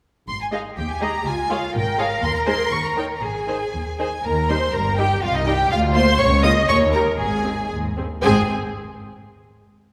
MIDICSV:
0, 0, Header, 1, 6, 480
1, 0, Start_track
1, 0, Key_signature, -4, "major"
1, 0, Tempo, 493421
1, 267, Time_signature, 2, 2, 24, 8
1, 6024, Key_signature, -4, "major"
1, 6506, Tempo, 517688
1, 9510, End_track
2, 0, Start_track
2, 0, Title_t, "Violin section"
2, 0, Program_c, 0, 48
2, 270, Note_on_c, 0, 84, 56
2, 380, Note_off_c, 0, 84, 0
2, 401, Note_on_c, 0, 80, 44
2, 446, Note_off_c, 0, 80, 0
2, 512, Note_on_c, 0, 77, 42
2, 590, Note_off_c, 0, 77, 0
2, 752, Note_on_c, 0, 79, 49
2, 866, Note_off_c, 0, 79, 0
2, 879, Note_on_c, 0, 80, 47
2, 992, Note_off_c, 0, 80, 0
2, 994, Note_on_c, 0, 82, 62
2, 1230, Note_off_c, 0, 82, 0
2, 1234, Note_on_c, 0, 80, 67
2, 1468, Note_off_c, 0, 80, 0
2, 1473, Note_on_c, 0, 77, 61
2, 1704, Note_off_c, 0, 77, 0
2, 1710, Note_on_c, 0, 79, 65
2, 1934, Note_off_c, 0, 79, 0
2, 1936, Note_on_c, 0, 77, 62
2, 2168, Note_off_c, 0, 77, 0
2, 2171, Note_on_c, 0, 84, 69
2, 2286, Note_off_c, 0, 84, 0
2, 2290, Note_on_c, 0, 82, 62
2, 2336, Note_off_c, 0, 82, 0
2, 2402, Note_on_c, 0, 84, 64
2, 2639, Note_off_c, 0, 84, 0
2, 2647, Note_on_c, 0, 85, 66
2, 2768, Note_off_c, 0, 85, 0
2, 2772, Note_on_c, 0, 82, 54
2, 2892, Note_off_c, 0, 82, 0
2, 2897, Note_on_c, 0, 79, 49
2, 2967, Note_off_c, 0, 79, 0
2, 3072, Note_on_c, 0, 82, 30
2, 3140, Note_off_c, 0, 82, 0
2, 3143, Note_on_c, 0, 80, 42
2, 3875, Note_off_c, 0, 80, 0
2, 3887, Note_on_c, 0, 80, 46
2, 4112, Note_off_c, 0, 80, 0
2, 4133, Note_on_c, 0, 82, 57
2, 4370, Note_off_c, 0, 82, 0
2, 4370, Note_on_c, 0, 84, 58
2, 4602, Note_on_c, 0, 82, 61
2, 4608, Note_off_c, 0, 84, 0
2, 4843, Note_off_c, 0, 82, 0
2, 4847, Note_on_c, 0, 79, 62
2, 5080, Note_off_c, 0, 79, 0
2, 5087, Note_on_c, 0, 77, 66
2, 5201, Note_off_c, 0, 77, 0
2, 5202, Note_on_c, 0, 75, 67
2, 5320, Note_off_c, 0, 75, 0
2, 5320, Note_on_c, 0, 79, 75
2, 5554, Note_on_c, 0, 77, 77
2, 5555, Note_off_c, 0, 79, 0
2, 5632, Note_off_c, 0, 77, 0
2, 5785, Note_on_c, 0, 84, 84
2, 6017, Note_off_c, 0, 84, 0
2, 6023, Note_on_c, 0, 85, 79
2, 6256, Note_on_c, 0, 87, 86
2, 6261, Note_off_c, 0, 85, 0
2, 6334, Note_off_c, 0, 87, 0
2, 6505, Note_on_c, 0, 85, 84
2, 6579, Note_off_c, 0, 85, 0
2, 6732, Note_on_c, 0, 82, 65
2, 6807, Note_off_c, 0, 82, 0
2, 6975, Note_on_c, 0, 80, 52
2, 7446, Note_off_c, 0, 80, 0
2, 7936, Note_on_c, 0, 80, 69
2, 8207, Note_off_c, 0, 80, 0
2, 9510, End_track
3, 0, Start_track
3, 0, Title_t, "Violin section"
3, 0, Program_c, 1, 48
3, 509, Note_on_c, 1, 75, 34
3, 510, Note_on_c, 1, 68, 32
3, 585, Note_off_c, 1, 75, 0
3, 586, Note_off_c, 1, 68, 0
3, 984, Note_on_c, 1, 68, 38
3, 986, Note_on_c, 1, 75, 39
3, 1061, Note_off_c, 1, 68, 0
3, 1063, Note_off_c, 1, 75, 0
3, 1465, Note_on_c, 1, 68, 45
3, 1465, Note_on_c, 1, 73, 42
3, 1540, Note_off_c, 1, 68, 0
3, 1541, Note_off_c, 1, 73, 0
3, 1931, Note_on_c, 1, 68, 43
3, 1934, Note_on_c, 1, 73, 44
3, 2006, Note_off_c, 1, 68, 0
3, 2008, Note_off_c, 1, 73, 0
3, 2393, Note_on_c, 1, 68, 41
3, 2395, Note_on_c, 1, 72, 43
3, 2470, Note_off_c, 1, 68, 0
3, 2473, Note_off_c, 1, 72, 0
3, 2886, Note_on_c, 1, 70, 35
3, 2887, Note_on_c, 1, 73, 33
3, 2964, Note_off_c, 1, 70, 0
3, 2965, Note_off_c, 1, 73, 0
3, 3388, Note_on_c, 1, 68, 27
3, 3390, Note_on_c, 1, 72, 29
3, 3466, Note_off_c, 1, 68, 0
3, 3468, Note_off_c, 1, 72, 0
3, 3884, Note_on_c, 1, 72, 26
3, 3885, Note_on_c, 1, 68, 32
3, 3962, Note_off_c, 1, 72, 0
3, 3963, Note_off_c, 1, 68, 0
3, 4126, Note_on_c, 1, 70, 59
3, 4362, Note_off_c, 1, 70, 0
3, 4367, Note_on_c, 1, 72, 54
3, 4604, Note_on_c, 1, 70, 54
3, 4607, Note_off_c, 1, 72, 0
3, 4844, Note_off_c, 1, 70, 0
3, 4852, Note_on_c, 1, 67, 55
3, 5087, Note_off_c, 1, 67, 0
3, 5090, Note_on_c, 1, 65, 64
3, 5205, Note_off_c, 1, 65, 0
3, 5214, Note_on_c, 1, 63, 53
3, 5326, Note_off_c, 1, 63, 0
3, 5331, Note_on_c, 1, 67, 62
3, 5555, Note_off_c, 1, 67, 0
3, 5560, Note_on_c, 1, 65, 65
3, 5789, Note_on_c, 1, 72, 76
3, 5792, Note_off_c, 1, 65, 0
3, 6021, Note_on_c, 1, 73, 75
3, 6024, Note_off_c, 1, 72, 0
3, 6256, Note_on_c, 1, 75, 78
3, 6260, Note_off_c, 1, 73, 0
3, 6498, Note_on_c, 1, 73, 68
3, 6500, Note_off_c, 1, 75, 0
3, 6730, Note_on_c, 1, 70, 60
3, 6734, Note_off_c, 1, 73, 0
3, 6966, Note_off_c, 1, 70, 0
3, 6969, Note_on_c, 1, 68, 47
3, 7444, Note_off_c, 1, 68, 0
3, 7929, Note_on_c, 1, 68, 59
3, 8203, Note_off_c, 1, 68, 0
3, 9510, End_track
4, 0, Start_track
4, 0, Title_t, "Viola section"
4, 0, Program_c, 2, 48
4, 505, Note_on_c, 2, 56, 32
4, 508, Note_on_c, 2, 63, 32
4, 581, Note_off_c, 2, 56, 0
4, 584, Note_off_c, 2, 63, 0
4, 978, Note_on_c, 2, 63, 38
4, 980, Note_on_c, 2, 56, 38
4, 1055, Note_off_c, 2, 63, 0
4, 1058, Note_off_c, 2, 56, 0
4, 1464, Note_on_c, 2, 56, 40
4, 1465, Note_on_c, 2, 65, 42
4, 1540, Note_off_c, 2, 56, 0
4, 1540, Note_off_c, 2, 65, 0
4, 1930, Note_on_c, 2, 65, 44
4, 1931, Note_on_c, 2, 56, 45
4, 2005, Note_off_c, 2, 65, 0
4, 2006, Note_off_c, 2, 56, 0
4, 2401, Note_on_c, 2, 63, 39
4, 2402, Note_on_c, 2, 56, 41
4, 2478, Note_off_c, 2, 63, 0
4, 2479, Note_off_c, 2, 56, 0
4, 2885, Note_on_c, 2, 63, 32
4, 2887, Note_on_c, 2, 51, 35
4, 2963, Note_off_c, 2, 63, 0
4, 2965, Note_off_c, 2, 51, 0
4, 3387, Note_on_c, 2, 51, 25
4, 3387, Note_on_c, 2, 63, 29
4, 3465, Note_off_c, 2, 51, 0
4, 3465, Note_off_c, 2, 63, 0
4, 3881, Note_on_c, 2, 51, 28
4, 3882, Note_on_c, 2, 63, 27
4, 3959, Note_off_c, 2, 51, 0
4, 3959, Note_off_c, 2, 63, 0
4, 4368, Note_on_c, 2, 55, 37
4, 4369, Note_on_c, 2, 63, 38
4, 4445, Note_off_c, 2, 55, 0
4, 4445, Note_off_c, 2, 63, 0
4, 4843, Note_on_c, 2, 55, 43
4, 4844, Note_on_c, 2, 63, 42
4, 4919, Note_off_c, 2, 55, 0
4, 4921, Note_off_c, 2, 63, 0
4, 5314, Note_on_c, 2, 63, 47
4, 5317, Note_on_c, 2, 55, 47
4, 5390, Note_off_c, 2, 63, 0
4, 5393, Note_off_c, 2, 55, 0
4, 5789, Note_on_c, 2, 65, 53
4, 5791, Note_on_c, 2, 58, 58
4, 5864, Note_off_c, 2, 65, 0
4, 5866, Note_off_c, 2, 58, 0
4, 6259, Note_on_c, 2, 58, 52
4, 6259, Note_on_c, 2, 65, 54
4, 6336, Note_off_c, 2, 58, 0
4, 6337, Note_off_c, 2, 65, 0
4, 6737, Note_on_c, 2, 58, 46
4, 6737, Note_on_c, 2, 67, 41
4, 6811, Note_off_c, 2, 58, 0
4, 6811, Note_off_c, 2, 67, 0
4, 7209, Note_on_c, 2, 60, 34
4, 7210, Note_on_c, 2, 68, 34
4, 7283, Note_off_c, 2, 60, 0
4, 7284, Note_off_c, 2, 68, 0
4, 7693, Note_on_c, 2, 60, 33
4, 7693, Note_on_c, 2, 68, 33
4, 7767, Note_off_c, 2, 60, 0
4, 7767, Note_off_c, 2, 68, 0
4, 7935, Note_on_c, 2, 68, 61
4, 7936, Note_on_c, 2, 60, 60
4, 8206, Note_off_c, 2, 60, 0
4, 8206, Note_off_c, 2, 68, 0
4, 9510, End_track
5, 0, Start_track
5, 0, Title_t, "Cello section"
5, 0, Program_c, 3, 48
5, 738, Note_on_c, 3, 67, 46
5, 1188, Note_off_c, 3, 67, 0
5, 1221, Note_on_c, 3, 65, 48
5, 1698, Note_off_c, 3, 65, 0
5, 1701, Note_on_c, 3, 70, 65
5, 3138, Note_off_c, 3, 70, 0
5, 3141, Note_on_c, 3, 68, 42
5, 3883, Note_off_c, 3, 68, 0
5, 4127, Note_on_c, 3, 39, 52
5, 4527, Note_off_c, 3, 39, 0
5, 4608, Note_on_c, 3, 43, 50
5, 5005, Note_off_c, 3, 43, 0
5, 5079, Note_on_c, 3, 36, 64
5, 5474, Note_off_c, 3, 36, 0
5, 5558, Note_on_c, 3, 38, 65
5, 5947, Note_off_c, 3, 38, 0
5, 6022, Note_on_c, 3, 37, 75
5, 6421, Note_off_c, 3, 37, 0
5, 6502, Note_on_c, 3, 39, 65
5, 6894, Note_off_c, 3, 39, 0
5, 6974, Note_on_c, 3, 44, 49
5, 7375, Note_off_c, 3, 44, 0
5, 7454, Note_on_c, 3, 44, 43
5, 7681, Note_off_c, 3, 44, 0
5, 7700, Note_on_c, 3, 43, 36
5, 7774, Note_off_c, 3, 43, 0
5, 7939, Note_on_c, 3, 44, 65
5, 8208, Note_off_c, 3, 44, 0
5, 9510, End_track
6, 0, Start_track
6, 0, Title_t, "Double bass section"
6, 0, Program_c, 4, 48
6, 268, Note_on_c, 4, 32, 46
6, 646, Note_off_c, 4, 32, 0
6, 746, Note_on_c, 4, 39, 52
6, 1125, Note_off_c, 4, 39, 0
6, 1224, Note_on_c, 4, 37, 56
6, 1600, Note_off_c, 4, 37, 0
6, 1701, Note_on_c, 4, 32, 65
6, 2069, Note_off_c, 4, 32, 0
6, 2167, Note_on_c, 4, 39, 67
6, 2543, Note_off_c, 4, 39, 0
6, 2641, Note_on_c, 4, 39, 57
6, 3032, Note_off_c, 4, 39, 0
6, 3136, Note_on_c, 4, 32, 42
6, 3529, Note_off_c, 4, 32, 0
6, 3636, Note_on_c, 4, 39, 40
6, 4026, Note_off_c, 4, 39, 0
6, 4128, Note_on_c, 4, 39, 53
6, 4528, Note_off_c, 4, 39, 0
6, 4609, Note_on_c, 4, 31, 55
6, 5005, Note_off_c, 4, 31, 0
6, 5082, Note_on_c, 4, 36, 60
6, 5476, Note_off_c, 4, 36, 0
6, 5554, Note_on_c, 4, 38, 65
6, 5945, Note_off_c, 4, 38, 0
6, 6020, Note_on_c, 4, 37, 80
6, 6420, Note_off_c, 4, 37, 0
6, 6498, Note_on_c, 4, 39, 69
6, 6892, Note_off_c, 4, 39, 0
6, 6970, Note_on_c, 4, 32, 50
6, 7373, Note_off_c, 4, 32, 0
6, 7451, Note_on_c, 4, 39, 42
6, 7858, Note_off_c, 4, 39, 0
6, 7937, Note_on_c, 4, 32, 66
6, 8207, Note_off_c, 4, 32, 0
6, 9510, End_track
0, 0, End_of_file